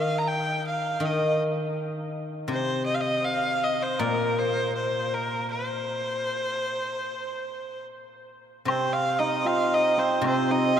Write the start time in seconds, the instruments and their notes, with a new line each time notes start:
Already playing: guzheng D#3, erhu F5
0.18 erhu A#5
0.28 erhu G5
0.67 erhu F5
1.00 guzheng D#3
1.05 erhu D#5
2.48 guzheng C3
2.52 erhu C5
2.86 erhu D#5
2.94 erhu F5
3.01 erhu D#5
3.25 erhu F5
3.63 erhu D#5
3.83 erhu C5
3.99 guzheng A#2, erhu A#4
4.39 erhu C5
4.75 erhu C5
5.14 erhu A#4
5.51 erhu C5
8.65 guzheng C3, hammered dulcimer C4, erhu C5, high woodblock
8.93 erhu F5
9.19 hammered dulcimer D#4, erhu D#5
9.45 hammered dulcimer F4, erhu F5, low woodblock
9.73 erhu D#5
9.97 hammered dulcimer C4, erhu C5
10.21 guzheng C3, hammered dulcimer C4, high woodblock
10.27 erhu C5
10.51 hammered dulcimer D#4, erhu D#5
10.76 hammered dulcimer F4